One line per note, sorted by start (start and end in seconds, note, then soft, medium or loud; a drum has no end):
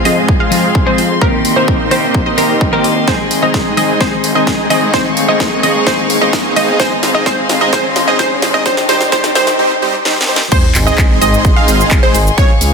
0.00 1.18 G#4 medium
0.00 1.18 F5 medium
0.00 4.90 C6 medium
0.00 riser medium
0.05 0.21 F2 loud
0.05 0.18 F3 medium
0.05 0.18 G#3 medium
0.05 0.37 G#3 medium
0.05 0.37 C4 medium
0.05 0.18 C4 medium
0.05 0.37 F4 medium
0.05 0.37 G#4 medium
0.05 0.19 G#4 medium
0.05 0.37 D#5 loud
0.05 open hi-hat loud
0.28 kick loud
0.40 0.84 G#3 medium
0.40 0.84 C4 medium
0.40 0.84 F4 medium
0.40 0.84 G#4 medium
0.40 0.84 F5 medium
0.51 0.67 F2 medium
0.51 0.65 F3 medium
0.51 0.65 G#3 medium
0.51 0.65 C4 medium
0.51 0.65 G#4 medium
0.51 open hi-hat loud
0.75 kick loud
0.86 1.18 F3 loud
0.86 1.19 G#3 medium
0.86 0.99 G#3 medium
0.86 0.99 C4 medium
0.86 1.19 C4 medium
0.86 0.99 F4 medium
0.86 0.99 G#4 medium
0.86 1.19 G#4 loud
0.86 0.99 C5 medium
0.86 0.99 C5 loud
0.98 1.14 F2 loud
0.98 open hi-hat loud
1.21 1.53 D#3 medium
1.21 1.34 A#3 medium
1.21 1.54 A#3 medium
1.21 1.34 C4 medium
1.21 1.54 C4 medium
1.21 1.34 D#4 medium
1.21 1.34 G4 medium
1.21 1.54 G4 medium
1.21 1.34 A#4 loud
1.21 3.06 A#4 medium
1.21 4.90 D#5 medium
1.21 kick loud
1.45 1.60 C2 loud
1.45 open hi-hat loud
1.56 1.77 D#3 medium
1.56 1.77 A#3 medium
1.56 1.88 A#3 medium
1.56 1.89 C4 medium
1.56 1.77 C4 medium
1.56 1.88 D#4 medium
1.56 1.88 G4 medium
1.56 1.78 A#4 medium
1.56 1.88 C5 medium
1.56 1.89 C5 medium
1.68 kick loud
1.91 2.07 C2 loud
1.91 2.04 D#3 medium
1.91 2.04 A#3 medium
1.91 2.23 A#3 loud
1.91 2.23 C4 medium
1.91 2.04 C4 medium
1.91 2.23 D#4 medium
1.91 2.23 G4 medium
1.91 2.05 G4 loud
1.91 2.23 C5 loud
1.91 open hi-hat medium
2.15 kick loud
2.26 2.35 A#3 medium
2.26 2.35 C4 medium
2.26 2.35 D#4 medium
2.26 2.35 G4 medium
2.26 2.35 D#5 medium
2.37 2.53 C2 medium
2.37 2.51 D#3 medium
2.37 2.51 A#3 medium
2.37 2.70 A#3 medium
2.37 2.70 C4 medium
2.37 2.51 C4 medium
2.37 2.70 D#4 medium
2.37 2.70 G4 medium
2.37 2.51 G4 loud
2.37 2.70 A#4 medium
2.37 open hi-hat loud
2.61 kick loud
2.72 3.04 D#3 loud
2.72 2.86 A#3 medium
2.72 3.05 A#3 medium
2.72 2.86 C4 medium
2.72 3.05 C4 medium
2.72 2.86 D#4 medium
2.72 2.86 G4 medium
2.72 3.05 G4 loud
2.72 2.86 A#4 loud
2.84 3.00 C2 medium
2.84 open hi-hat loud
3.07 3.39 D#3 medium
3.07 3.40 G#3 medium
3.07 3.20 G#3 medium
3.07 3.20 C4 medium
3.07 3.40 C4 medium
3.07 3.20 D#4 medium
3.07 3.20 G#4 medium
3.07 8.62 G#4 medium
3.07 3.40 G#4 medium
3.07 3.20 C5 loud
3.07 kick loud
3.07 snare soft
3.31 3.46 G#1 loud
3.31 open hi-hat loud
3.42 3.63 D#3 medium
3.42 3.75 G#3 medium
3.42 3.63 G#3 medium
3.42 3.75 C4 medium
3.42 3.64 C4 medium
3.42 3.75 D#4 medium
3.42 3.75 G#4 medium
3.42 3.64 A#4 medium
3.42 3.75 D#5 medium
3.54 kick loud
3.54 snare soft
3.77 3.93 G#1 loud
3.77 3.90 D#3 medium
3.77 3.90 G#3 medium
3.77 3.99 G#3 medium
3.77 3.99 C4 medium
3.77 3.91 C4 medium
3.77 3.99 D#4 medium
3.77 3.99 G#4 medium
3.77 3.91 G#4 medium
3.77 3.99 D#5 loud
3.77 open hi-hat medium
4.00 4.32 D#3 medium
4.00 4.33 G#3 medium
4.00 4.33 C4 medium
4.00 4.33 G#4 medium
4.00 4.13 C5 loud
4.00 kick loud
4.00 snare medium
4.24 4.39 G#1 loud
4.24 open hi-hat loud
4.35 4.56 D#3 medium
4.35 4.68 G#3 medium
4.35 4.56 G#3 medium
4.35 4.68 C4 medium
4.35 4.57 C4 medium
4.35 4.68 D#4 medium
4.35 4.68 G#4 medium
4.35 4.57 A#4 medium
4.35 4.68 D#5 medium
4.47 kick loud
4.47 snare medium
4.70 4.86 G#1 loud
4.70 4.83 D#3 medium
4.70 4.92 G#3 medium
4.70 4.83 G#3 medium
4.70 4.92 C4 medium
4.70 4.84 C4 medium
4.70 4.92 D#4 medium
4.70 4.92 G#4 medium
4.70 4.84 G#4 medium
4.70 4.92 D#5 loud
4.70 open hi-hat medium
4.93 5.25 D#3 medium
4.93 5.26 G#3 medium
4.93 5.06 C4 medium
4.93 5.26 C4 medium
4.93 5.06 D#4 medium
4.93 5.26 G#4 medium
4.93 5.06 C5 loud
4.93 8.62 F5 medium
4.93 6.78 C#6 medium
4.93 kick loud
4.93 snare medium
5.17 5.32 C#2 loud
5.17 open hi-hat loud
5.28 5.49 D#3 medium
5.28 5.61 G#3 medium
5.28 5.49 G#3 medium
5.28 5.61 C4 medium
5.28 5.50 C4 medium
5.28 5.61 D#4 medium
5.28 5.61 G#4 medium
5.28 5.50 A#4 medium
5.28 5.61 D#5 medium
5.40 kick loud
5.40 snare medium
5.63 5.79 C#2 loud
5.63 5.76 D#3 medium
5.63 5.85 G#3 medium
5.63 5.76 G#3 medium
5.63 5.85 C4 medium
5.63 5.77 C4 medium
5.63 5.85 D#4 medium
5.63 5.85 G#4 medium
5.63 5.77 G#4 medium
5.63 5.85 D#5 loud
5.63 open hi-hat medium
5.86 6.18 D#3 medium
5.86 6.19 G#3 medium
5.86 5.99 G#3 medium
5.86 5.99 C4 medium
5.86 6.19 C4 medium
5.86 5.99 D#4 medium
5.86 6.00 G#4 medium
5.86 6.19 G#4 medium
5.86 6.00 C5 loud
5.86 kick loud
5.86 snare medium
6.10 6.25 C#2 medium
6.10 open hi-hat loud
6.21 6.42 D#3 medium
6.21 6.42 G#3 medium
6.21 6.54 G#3 medium
6.21 6.54 C4 medium
6.21 6.43 C4 medium
6.21 6.54 D#4 medium
6.21 6.54 G#4 medium
6.21 6.43 A#4 medium
6.21 6.54 D#5 medium
6.33 kick loud
6.33 snare medium
6.56 6.72 C#2 loud
6.56 6.69 D#3 medium
6.56 6.69 G#3 medium
6.56 6.78 G#3 medium
6.56 6.78 C4 medium
6.56 6.70 C4 medium
6.56 6.78 D#4 medium
6.56 6.78 G#4 medium
6.56 6.70 G#4 medium
6.56 6.78 D#5 loud
6.56 open hi-hat medium
6.79 7.11 D#3 medium
6.79 7.12 G#3 medium
6.79 6.93 G#3 loud
6.79 6.93 C4 medium
6.79 7.12 C4 medium
6.79 6.93 D#4 medium
6.79 7.12 G#4 medium
6.79 6.93 C5 loud
6.79 9.56 C6 loud
6.79 kick loud
6.79 snare medium
7.03 7.18 F2 loud
7.03 snare medium
7.03 open hi-hat loud
7.14 7.24 D#3 medium
7.14 7.24 G#3 medium
7.14 7.24 C4 medium
7.14 7.24 D#4 medium
7.14 7.24 G#4 medium
7.14 7.25 A#4 medium
7.14 7.24 D#5 medium
7.26 7.58 D#3 medium
7.26 7.58 G#3 medium
7.26 7.39 G#3 loud
7.26 7.39 C4 medium
7.26 7.58 C4 medium
7.26 7.39 D#4 medium
7.26 7.39 G#4 medium
7.26 7.59 G#4 medium
7.26 7.39 C5 loud
7.26 kick loud
7.26 snare medium
7.49 7.65 F2 loud
7.49 snare medium
7.49 open hi-hat medium
7.60 7.71 D#3 medium
7.60 7.71 G#3 medium
7.60 7.71 C4 medium
7.60 7.71 D#4 medium
7.60 7.71 G#4 medium
7.60 7.71 A#4 loud
7.60 7.71 D#5 medium
7.72 8.04 D#3 medium
7.72 7.86 G#3 loud
7.72 8.05 G#3 medium
7.72 7.86 C4 medium
7.72 8.05 C4 medium
7.72 7.86 D#4 medium
7.72 7.86 G#4 medium
7.72 8.05 G#4 medium
7.72 7.86 C5 loud
7.72 kick loud
7.72 snare medium
7.96 8.11 F2 medium
7.96 snare medium
7.96 open hi-hat loud
8.07 8.17 D#3 medium
8.07 8.17 G#3 medium
8.07 8.17 C4 medium
8.07 8.17 D#4 medium
8.07 8.17 G#4 medium
8.07 8.18 A#4 medium
8.07 8.17 D#5 medium
8.19 8.51 D#3 medium
8.19 8.51 G#3 medium
8.19 8.32 G#3 loud
8.19 8.32 C4 medium
8.19 8.51 C4 medium
8.19 8.32 D#4 medium
8.19 8.52 G#4 medium
8.19 8.32 C5 loud
8.19 kick loud
8.19 snare medium
8.42 8.58 F2 loud
8.42 snare medium
8.42 open hi-hat medium
8.53 8.64 D#3 medium
8.53 8.64 G#3 medium
8.53 8.64 C4 medium
8.53 8.64 D#4 medium
8.53 8.64 G#4 medium
8.53 8.64 A#4 medium
8.53 8.64 D#5 medium
8.65 8.87 D#3 medium
8.65 8.79 G3 loud
8.65 8.87 G3 medium
8.65 8.79 C4 medium
8.65 8.87 C4 medium
8.65 8.79 D#4 medium
8.65 8.87 G4 medium
8.65 9.58 A#4 medium
8.65 8.79 C5 loud
8.65 9.58 D#5 medium
8.65 kick loud
8.65 snare medium
8.77 snare medium
8.88 9.04 C2 loud
8.88 9.10 D#3 medium
8.88 9.02 G3 loud
8.88 9.10 G3 medium
8.88 9.10 C4 medium
8.88 9.02 C4 medium
8.88 9.02 D#4 medium
8.88 9.02 G4 medium
8.88 9.11 G4 medium
8.88 9.02 C5 loud
8.88 snare medium
8.88 open hi-hat loud
9.01 snare medium
9.12 9.33 D#3 medium
9.12 9.34 G3 medium
9.12 9.25 G3 loud
9.12 9.25 C4 medium
9.12 9.34 C4 medium
9.12 9.25 D#4 medium
9.12 9.25 G4 loud
9.12 9.34 G4 medium
9.12 9.25 C5 loud
9.12 kick loud
9.12 snare loud
9.24 snare medium
9.35 9.51 C2 loud
9.35 9.57 D#3 medium
9.35 9.48 G3 loud
9.35 9.57 G3 medium
9.35 9.57 C4 medium
9.35 9.48 C4 medium
9.35 9.48 D#4 medium
9.35 9.48 G4 medium
9.35 9.57 G4 medium
9.35 9.48 C5 loud
9.35 snare loud
9.35 open hi-hat medium
9.47 snare medium
9.59 9.72 G3 loud
9.59 9.72 C4 medium
9.59 9.72 D#4 medium
9.59 9.72 G4 medium
9.59 9.72 C5 loud
9.82 9.95 G3 loud
9.82 9.95 C4 medium
9.82 9.95 D#4 medium
9.82 9.95 G4 medium
9.82 9.95 C5 loud
10.05 10.18 G3 loud
10.05 10.18 C4 loud
10.05 10.18 D#4 loud
10.05 10.18 G4 loud
10.05 10.18 C5 loud
10.05 snare medium
10.21 snare medium
10.28 10.41 G3 loud
10.28 10.41 C4 loud
10.28 10.41 D#4 medium
10.28 10.41 G4 medium
10.28 10.41 C5 loud
10.36 snare loud
10.52 10.65 G#3 medium
10.52 10.65 C4 medium
10.52 10.65 D#4 medium
10.52 12.73 G#4 medium
10.52 10.65 G#4 medium
10.52 10.65 C5 loud
10.52 12.36 D#5 medium
10.52 12.36 C6 medium
10.52 kick loud
10.52 crash loud
10.52 ride medium
10.52 sub drop medium
10.52 shaker soft
10.75 10.90 G#1 loud
10.75 clap medium
10.75 open hi-hat loud
10.75 shaker medium
10.87 11.19 G#3 medium
10.87 11.19 C4 medium
10.87 11.19 D#4 medium
10.87 11.19 G#4 medium
10.87 11.19 D#5 medium
10.87 shaker soft
10.98 kick loud
10.98 clap loud
10.98 ride medium
10.98 shaker soft
11.21 11.37 G#1 loud
11.21 11.54 G#3 loud
11.21 11.54 C4 medium
11.21 11.54 D#4 medium
11.21 11.54 G#4 medium
11.21 11.54 D#5 loud
11.21 open hi-hat loud
11.21 shaker medium
11.34 shaker soft
11.45 kick loud
11.45 ride medium
11.45 shaker soft
11.56 12.00 G#3 medium
11.56 12.00 C4 medium
11.56 12.00 D#4 medium
11.56 12.00 G#4 medium
11.56 12.00 F5 medium
11.68 11.83 G#1 medium
11.68 open hi-hat loud
11.68 shaker medium
11.80 shaker soft
11.91 kick loud
11.91 clap loud
11.91 ride medium
11.91 shaker soft
12.03 12.16 G#3 medium
12.03 12.16 C4 medium
12.03 12.16 D#4 medium
12.03 12.16 G#4 medium
12.03 12.16 C5 medium
12.03 12.16 C5 loud
12.15 12.30 G#1 loud
12.15 open hi-hat loud
12.15 shaker medium
12.27 shaker soft
12.38 12.51 G#3 loud
12.38 12.51 C#4 medium
12.38 12.51 F4 medium
12.38 12.51 G#4 medium
12.38 12.51 C#5 loud
12.38 12.73 F5 medium
12.38 12.73 C#6 medium
12.38 kick loud
12.38 ride medium
12.38 shaker soft
12.61 12.73 C#2 loud
12.61 open hi-hat loud
12.61 shaker medium